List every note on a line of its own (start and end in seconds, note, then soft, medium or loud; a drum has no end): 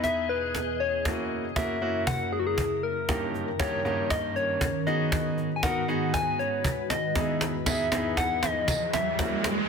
0.00 1.03 E2 medium
0.00 1.03 B2 medium
0.00 0.55 B3 medium
0.00 0.55 D#4 medium
0.00 0.55 E4 medium
0.00 1.03 G#4 medium
0.00 0.55 B4 medium
0.00 1.03 D#5 medium
0.00 0.31 E5 loud
0.00 cajon slap medium
0.29 0.82 B4 loud
0.55 cajon slap medium
0.80 1.31 C#5 medium
1.05 3.07 F#2 medium
1.05 3.07 C#3 medium
1.05 1.44 A#3 medium
1.05 1.44 C#4 medium
1.05 3.07 E4 medium
1.05 1.44 E4 medium
1.05 1.44 F#4 medium
1.05 4.83 A#4 medium
1.05 cajon bass loud
1.05 cajon slap medium
1.56 1.75 A#3 medium
1.56 1.75 C#4 medium
1.56 1.76 E4 medium
1.56 1.76 F#4 medium
1.56 2.09 E5 loud
1.56 cajon bass loud
1.56 cajon slap medium
1.81 2.59 A#3 medium
1.81 2.59 C#4 medium
1.81 2.59 E4 medium
1.81 2.59 F#4 medium
2.07 2.34 F#5 loud
2.07 cajon bass loud
2.07 cajon slap medium
2.33 2.41 G#4 medium
2.39 2.48 F#4 medium
2.47 2.85 G#4 loud
2.58 cajon bass loud
2.58 cajon slap medium
2.83 3.34 A#4 medium
3.08 3.47 G2 medium
3.08 4.85 G2 medium
3.08 7.12 D#3 medium
3.08 3.47 A#3 medium
3.08 3.47 C#4 medium
3.08 4.85 C#4 medium
3.08 3.47 D#4 medium
3.08 3.47 G4 medium
3.08 cajon bass loud
3.08 cajon slap medium
3.34 cajon slap soft
3.59 3.79 G2 medium
3.59 3.79 A#3 medium
3.59 3.79 C#4 medium
3.59 3.79 D#4 medium
3.59 3.79 G4 medium
3.59 4.12 C#5 loud
3.59 cajon bass loud
3.59 cajon slap medium
3.85 4.62 G2 medium
3.85 4.62 A#3 medium
3.85 4.62 C#4 medium
3.85 4.62 D#4 medium
3.85 4.62 G4 medium
3.85 cajon slap soft
4.10 4.38 D#5 loud
4.10 cajon bass loud
4.10 cajon slap medium
4.36 4.88 C#5 loud
4.36 cajon slap soft
4.61 cajon bass loud
4.61 cajon slap medium
4.86 7.13 G#2 medium
4.86 5.48 B3 medium
4.86 5.48 D#4 medium
4.86 5.48 F#4 medium
4.86 7.13 F#4 medium
4.86 5.48 G#4 medium
4.86 7.13 B4 medium
4.86 5.38 D#5 loud
4.86 cajon slap soft
5.12 cajon bass loud
5.12 cajon slap medium
5.38 cajon slap soft
5.56 5.65 G#5 medium
5.63 5.82 B3 medium
5.63 5.82 D#4 medium
5.63 5.82 F#4 medium
5.63 5.82 A#4 medium
5.63 6.15 F#5 loud
5.63 cajon bass loud
5.63 cajon slap medium
5.88 6.65 B3 medium
5.88 6.65 D#4 medium
5.88 6.66 F#4 medium
5.88 6.66 G#4 medium
5.88 cajon slap soft
6.14 6.41 G#5 loud
6.14 cajon bass loud
6.14 cajon slap medium
6.39 6.89 C#5 loud
6.39 cajon slap soft
6.64 cajon bass loud
6.64 cajon slap medium
6.90 7.37 D#5 medium
6.90 cajon slap medium
7.15 9.17 E2 medium
7.15 9.17 E3 medium
7.15 7.54 B3 medium
7.15 7.54 D#4 medium
7.15 7.54 E4 medium
7.15 9.17 G#4 medium
7.15 7.54 G#4 medium
7.15 9.17 B4 medium
7.15 cajon bass loud
7.15 cajon slap medium
7.15 riser medium
7.41 cajon slap medium
7.66 7.86 B3 medium
7.66 7.86 D#4 medium
7.66 7.86 E4 medium
7.66 7.86 G#4 medium
7.66 8.19 E5 loud
7.66 cajon bass loud
7.66 cajon slap medium
7.66 tambourine medium
7.91 8.69 B3 medium
7.91 8.69 D#4 medium
7.91 8.69 E4 medium
7.91 8.69 G#4 medium
7.91 cajon slap medium
8.17 8.44 F#5 loud
8.17 cajon bass loud
8.17 cajon slap medium
8.43 8.95 D#5 loud
8.43 cajon slap medium
8.68 cajon bass loud
8.68 cajon slap medium
8.68 tambourine medium
8.93 9.44 E5 medium
8.93 cajon slap medium
9.19 9.69 F#2 medium
9.19 9.69 F#3 medium
9.19 9.57 A#3 medium
9.19 9.57 C#4 medium
9.19 9.58 E4 medium
9.19 9.58 F#4 medium
9.19 9.69 A#4 medium
9.19 9.69 E5 medium
9.19 cajon bass loud
9.19 cajon slap loud
9.44 cajon slap medium